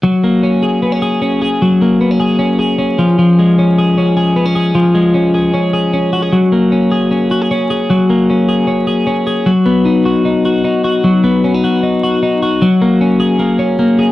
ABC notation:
X:1
M:4/4
L:1/16
Q:1/4=153
K:F#
V:1 name="Clean electric guitar"
F,2 A,2 C2 G2 B, C G2 C2 G2 | F,2 A,2 B, C G2 C2 G2 C2 E,2 | E,2 G,2 C2 G2 C2 G2 B, C G2 | E,2 G,2 C2 G2 C2 G2 C2 F G |
F,2 A,2 C2 G2 C2 F G C2 G2 | F,2 A,2 C2 G2 C2 G2 C2 G2 | F,2 B,2 D2 F2 D2 F2 D2 F2 | F,2 B,2 C D F2 D2 F2 D2 F2 |
F,2 A,2 C2 G2 A,2 C2 A,2 G2 |]